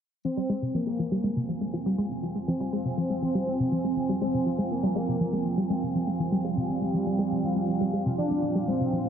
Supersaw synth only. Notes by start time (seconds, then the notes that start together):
0.25 C4
0.74 A#3
2.48 C4
4.21 C4
4.71 A#3
6.44 G3
8.18 D4
8.68 C4